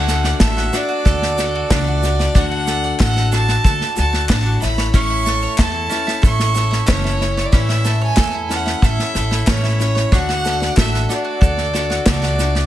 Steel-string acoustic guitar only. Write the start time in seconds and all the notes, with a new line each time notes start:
Already playing: D3 A3 D4 F#4
0.73 A3 D4 F#4
1.37 A3 D4 F#4
1.71 A3 D4 F#4
2.02 A3 D4 F#4
2.35 D3 A3 D4 F#4
3.32 A3 D4 F#4
3.96 A3 D4 F#4
4.30 D3 A3 D4 F#4
4.62 A3 C#4 E4
4.93 A2 E3 A3 C#4 E4
5.91 A3 C#4 E4
6.55 A3 C#4 E4
6.86 E3 A3 C#4 E4
7.21 A3 C#4 E4
7.53 A2 E3 A3 C#4 E4
8.49 A3 C#4 E4
9.14 A3 C#4 E4
9.47 E3 A3 C#4 E4
9.80 A3 C#4 E4
10.12 D3 A3 D4 F#4
11.10 A3 D4 F#4
11.74 A3 D4 F#4
12.08 A3 D4 F#4
12.40 A3 D4 F#4